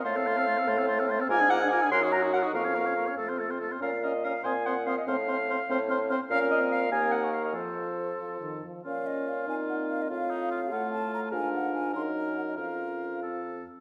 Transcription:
X:1
M:6/8
L:1/16
Q:3/8=96
K:Bbm
V:1 name="Flute"
=a' f' a' f' a' f' a' f' a' f' a' f' | =d' f' d' f' d' f' g' e' g' e' g' e' | d' f' d' f' d' f' =a' f' a' f' a' f' | f'2 f'2 f'2 e'2 e'2 e'2 |
f'2 f'2 f'2 f'2 f'2 f'2 | f'6 e'3 d'3 | c'8- c'2 z2 | f2 e2 f2 a2 g2 f e |
f6 g2 =a2 b2 | a2 g2 a2 c'2 b2 g e | f6 z6 |]
V:2 name="Clarinet"
f8- f2 z2 | a2 g2 a2 c'2 b2 g e | f6 z6 | f2 e2 f2 a2 g2 f e |
f8- f2 z2 | f2 e2 f2 a2 g2 f e | c6 z6 | D6 C6- |
C6 =A,6 | =D6 E6 | D6 C4 z2 |]
V:3 name="Oboe"
c =A c A c A c A c A c A | B A B A B A B G B G B G | B d B d B d =A c A c A c | B2 B2 B2 c2 c2 c2 |
c2 c2 c2 c2 c2 c2 | B6 B6 | =A8- A2 z2 | F12 |
F2 E2 F2 F6 | B6 B6 | B6 =A4 z2 |]
V:4 name="French horn"
=A, C A, C A, C A, C A, C A, C | F =D F D F D G E G E G E | B, D B, D B, D =A, C A, C A, C | D2 D2 D2 C2 C2 C2 |
C2 C2 C2 C2 C2 C2 | D3 C3 B,6 | F,6 F,2 E,2 F,2 | D6 E6 |
F6 =A6 | F6 E6 | F8- F z3 |]
V:5 name="Bassoon" clef=bass
=A,,6 A,,6 | A,,6 G,,6 | F,,6 F,,6 | B,,6 B,,6 |
=A,,6 A,,6 | B,,6 E,,6 | F,,8- F,,2 z2 | B,,6 B,,6 |
=A,,12 | A,,6 G,,6 | F,,8- F,,2 z2 |]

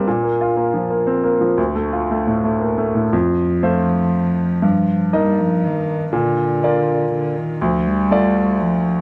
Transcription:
X:1
M:3/4
L:1/8
Q:1/4=121
K:Fmix
V:1 name="Grand piano"
(3B,, B, F (3B, F, B, (3C B, F, | (3D,, A, F (3A, A,, A, (3B, A, A,, | F,,2 [A,Fc]4 | G,,2 [B,Ee]4 |
B,,2 [B,Fd]4 | D,,2 [A,Fd]4 |]
V:2 name="Cello" clef=bass
z6 | z6 | F,6- | F,2 G, F, E,2 |
D,4 D, E, | F, G,3 F,2 |]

